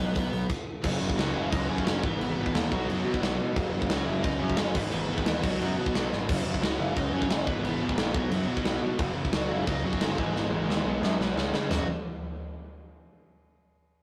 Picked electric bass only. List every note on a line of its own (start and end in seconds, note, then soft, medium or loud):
0.00 0.12 B1 medium
0.16 0.29 B1 medium
0.33 0.46 B1 loud
0.84 0.98 F#1 loud
1.02 1.16 F#1 medium
1.17 1.32 C#2 medium
1.35 1.49 F#1 loud
1.53 1.67 C#2 medium
1.69 1.83 F#2 medium
1.86 2.00 F#1 loud
2.03 2.17 G#1 medium
2.20 2.34 G#1 loud
2.36 2.51 G#1 medium
2.54 2.68 D#2 loud
2.72 2.86 B1 loud
2.88 3.03 F#2 medium
3.04 3.19 B2 loud
3.22 3.36 B1 medium
3.38 3.53 B2 loud
3.57 3.71 F#1 loud
3.73 3.87 F#1 loud
3.89 4.04 C#2 loud
4.08 4.22 F#1 loud
4.24 4.38 C#2 loud
4.42 4.56 F#2 loud
4.59 4.73 F#1 medium
4.75 4.90 G#1 medium
4.93 5.07 G#1 loud
5.11 5.24 G#1 medium
5.27 5.41 D#2 loud
5.43 5.57 B1 loud
5.61 5.75 F#2 medium
5.78 5.92 B2 loud
5.95 6.09 B1 loud
6.13 6.26 G#1 medium
6.29 6.43 F#1 loud
6.45 6.59 F#1 medium
6.61 6.76 C#2 medium
6.79 6.93 F#1 loud
6.97 7.10 C#2 medium
7.12 7.27 F#2 medium
7.30 7.44 F#1 loud
7.47 7.61 G#1 medium
7.63 7.77 G#1 loud
7.79 7.94 G#1 medium
7.96 8.11 A#1 medium
8.15 8.29 B1 medium
8.30 8.45 F#2 loud
8.47 8.61 B2 loud
8.64 8.79 B1 loud
8.82 8.96 B2 medium
8.99 9.13 F#1 loud
9.15 9.29 F#1 medium
9.32 9.47 C#2 loud
9.50 9.64 F#1 loud
9.68 9.81 C#2 loud
9.83 9.98 F#2 loud
10.01 10.15 G1 loud
10.19 10.32 G#1 medium
10.35 10.49 G#1 loud
10.52 10.66 G#1 loud
10.68 10.83 D#2 medium
10.85 10.99 B1 medium
11.01 11.16 F#2 loud
11.19 11.33 B1 loud
11.36 11.50 C#2 loud
11.52 11.67 C#3 medium
11.69 11.85 F#1 loud